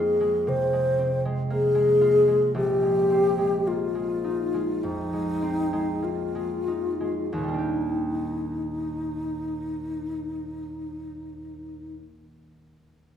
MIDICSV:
0, 0, Header, 1, 3, 480
1, 0, Start_track
1, 0, Key_signature, -3, "major"
1, 0, Tempo, 1041667
1, 1182, Time_signature, 4, 2, 24, 8
1, 1182, Tempo, 1109057
1, 1662, Tempo, 1167315
1, 2142, Tempo, 1204819
1, 2622, Tempo, 1263158
1, 5329, End_track
2, 0, Start_track
2, 0, Title_t, "Alto flute"
2, 0, Program_c, 0, 73
2, 0, Note_on_c, 0, 68, 95
2, 224, Note_on_c, 0, 72, 101
2, 231, Note_off_c, 0, 68, 0
2, 568, Note_off_c, 0, 72, 0
2, 699, Note_on_c, 0, 68, 102
2, 1164, Note_off_c, 0, 68, 0
2, 1184, Note_on_c, 0, 67, 94
2, 1662, Note_on_c, 0, 65, 90
2, 1668, Note_off_c, 0, 67, 0
2, 2139, Note_on_c, 0, 63, 89
2, 2145, Note_off_c, 0, 65, 0
2, 2621, Note_on_c, 0, 65, 77
2, 2626, Note_off_c, 0, 63, 0
2, 3099, Note_off_c, 0, 65, 0
2, 3101, Note_on_c, 0, 63, 74
2, 4866, Note_off_c, 0, 63, 0
2, 5329, End_track
3, 0, Start_track
3, 0, Title_t, "Harp"
3, 0, Program_c, 1, 46
3, 0, Note_on_c, 1, 41, 71
3, 0, Note_on_c, 1, 56, 55
3, 0, Note_on_c, 1, 60, 56
3, 0, Note_on_c, 1, 65, 53
3, 90, Note_off_c, 1, 56, 0
3, 95, Note_on_c, 1, 56, 53
3, 217, Note_on_c, 1, 48, 57
3, 331, Note_off_c, 1, 56, 0
3, 337, Note_on_c, 1, 56, 50
3, 450, Note_off_c, 1, 60, 0
3, 456, Note_on_c, 1, 60, 55
3, 571, Note_off_c, 1, 56, 0
3, 577, Note_on_c, 1, 56, 52
3, 693, Note_on_c, 1, 58, 54
3, 800, Note_off_c, 1, 56, 0
3, 806, Note_on_c, 1, 56, 60
3, 898, Note_off_c, 1, 58, 0
3, 921, Note_off_c, 1, 65, 0
3, 927, Note_on_c, 1, 65, 55
3, 1044, Note_off_c, 1, 56, 0
3, 1049, Note_on_c, 1, 56, 52
3, 1085, Note_off_c, 1, 41, 0
3, 1173, Note_on_c, 1, 34, 64
3, 1199, Note_off_c, 1, 48, 0
3, 1289, Note_off_c, 1, 56, 0
3, 1294, Note_on_c, 1, 56, 49
3, 1408, Note_off_c, 1, 60, 0
3, 1413, Note_on_c, 1, 60, 52
3, 1528, Note_off_c, 1, 56, 0
3, 1533, Note_on_c, 1, 56, 55
3, 1659, Note_on_c, 1, 58, 52
3, 1770, Note_off_c, 1, 56, 0
3, 1775, Note_on_c, 1, 56, 48
3, 1862, Note_off_c, 1, 58, 0
3, 1896, Note_on_c, 1, 63, 49
3, 2013, Note_off_c, 1, 56, 0
3, 2018, Note_on_c, 1, 56, 50
3, 2138, Note_on_c, 1, 41, 49
3, 2252, Note_off_c, 1, 56, 0
3, 2257, Note_on_c, 1, 56, 46
3, 2369, Note_off_c, 1, 60, 0
3, 2374, Note_on_c, 1, 60, 52
3, 2490, Note_off_c, 1, 56, 0
3, 2495, Note_on_c, 1, 56, 52
3, 2568, Note_off_c, 1, 65, 0
3, 2613, Note_on_c, 1, 58, 49
3, 2733, Note_off_c, 1, 56, 0
3, 2737, Note_on_c, 1, 56, 53
3, 2773, Note_off_c, 1, 34, 0
3, 2823, Note_off_c, 1, 58, 0
3, 2857, Note_off_c, 1, 63, 0
3, 2861, Note_on_c, 1, 63, 46
3, 2982, Note_off_c, 1, 56, 0
3, 2986, Note_on_c, 1, 56, 46
3, 3108, Note_on_c, 1, 39, 64
3, 3126, Note_off_c, 1, 60, 0
3, 3127, Note_off_c, 1, 41, 0
3, 3127, Note_off_c, 1, 56, 0
3, 3128, Note_on_c, 1, 46, 48
3, 3149, Note_on_c, 1, 55, 53
3, 3167, Note_on_c, 1, 58, 51
3, 3189, Note_on_c, 1, 62, 48
3, 3207, Note_on_c, 1, 67, 54
3, 4343, Note_off_c, 1, 63, 0
3, 4873, Note_off_c, 1, 39, 0
3, 4893, Note_off_c, 1, 46, 0
3, 4914, Note_off_c, 1, 55, 0
3, 4932, Note_off_c, 1, 58, 0
3, 4954, Note_off_c, 1, 62, 0
3, 4972, Note_off_c, 1, 67, 0
3, 5329, End_track
0, 0, End_of_file